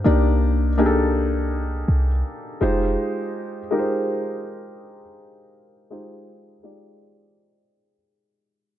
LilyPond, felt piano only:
\new Staff \with { instrumentName = "Felt piano" } { \time 4/4 \key f \lydian \tempo 4 = 82 <bes d' ees' g' d''>4 <bes d' ees' g' gis' a'>4.~ <bes d' ees' g' gis' a'>16 r8. <aes ees' f' g' c''>8~ | <aes ees' f' g' c''>4 <aes ees' f' g' bes' c''>4.~ <aes ees' f' g' bes' c''>16 r4 r16 | <aes ees' f' g' c''>4 <aes ees' f' g' d''>4.~ <aes ees' f' g' d''>16 r4 r16 | }